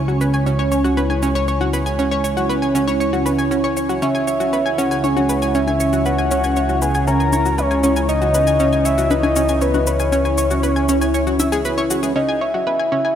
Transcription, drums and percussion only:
0.08 cabasa
0.21 cabasa
0.34 cabasa
0.47 cabasa
0.59 cabasa
0.72 cabasa
0.85 cabasa
0.97 low bongo, cabasa
1.10 low bongo, cabasa
1.23 cabasa
1.35 cabasa
1.48 cabasa
1.61 low bongo, cabasa
1.73 cabasa
1.86 cabasa
1.99 cabasa
2.12 cabasa
2.24 cabasa
2.37 cabasa
2.50 cabasa
2.63 cabasa
2.75 cabasa
2.88 low bongo, cabasa
3.01 cabasa
3.13 cabasa
3.26 low bongo, cabasa
3.39 cabasa
3.51 cabasa
3.64 cabasa
3.77 cabasa
3.90 cabasa
4.02 cabasa
4.15 cabasa
4.28 cabasa
4.40 cabasa
4.53 cabasa
4.66 cabasa
4.79 cabasa
4.91 cabasa
5.04 low bongo, cabasa
5.17 low bongo, cabasa
5.29 cabasa
5.42 cabasa
5.55 cabasa
5.67 low bongo, cabasa
5.80 cabasa
5.93 cabasa
6.06 cabasa
6.18 cabasa
6.31 cabasa
6.44 cabasa
6.56 cabasa
6.69 cabasa
6.82 cabasa
6.95 cabasa
7.07 cabasa
7.20 cabasa
7.33 low bongo, cabasa
7.45 cabasa
7.58 cabasa
7.71 cabasa
7.84 cabasa
7.96 cabasa
8.09 cabasa
8.22 cabasa
8.34 cabasa
8.47 cabasa
8.60 cabasa
8.73 cabasa
8.85 cabasa
8.98 cabasa
9.11 low bongo, cabasa
9.23 low bongo, cabasa
9.36 cabasa
9.49 cabasa
9.61 cabasa
9.74 low bongo, cabasa
9.87 cabasa
10.00 cabasa
10.12 cabasa
10.25 cabasa
10.38 cabasa
10.51 cabasa
10.63 cabasa
10.76 cabasa
10.89 cabasa
11.02 cabasa
11.14 cabasa
11.27 cabasa
11.40 low bongo, cabasa
11.52 cabasa
11.65 cabasa
11.78 cabasa
11.90 cabasa
12.03 cabasa

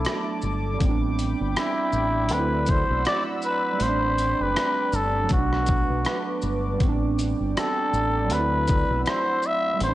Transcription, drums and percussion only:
0.05 cross-stick, closed hi-hat
0.42 shaker
0.80 kick, closed hi-hat
1.19 closed hi-hat, shaker
1.56 cross-stick, closed hi-hat
1.93 shaker
2.29 closed hi-hat
2.66 kick, closed hi-hat, shaker
3.05 cross-stick, closed hi-hat
3.42 shaker
3.80 closed hi-hat
4.18 closed hi-hat, shaker
4.56 cross-stick, closed hi-hat
4.93 shaker
5.29 kick, closed hi-hat
5.53 cross-stick
5.66 kick, closed hi-hat, shaker
6.05 cross-stick, closed hi-hat
6.42 shaker
6.80 kick, closed hi-hat
7.19 closed hi-hat, shaker
7.57 cross-stick, closed hi-hat
7.94 shaker
8.30 closed hi-hat
8.68 kick, closed hi-hat, shaker
9.06 cross-stick, closed hi-hat
9.42 shaker
9.80 closed hi-hat

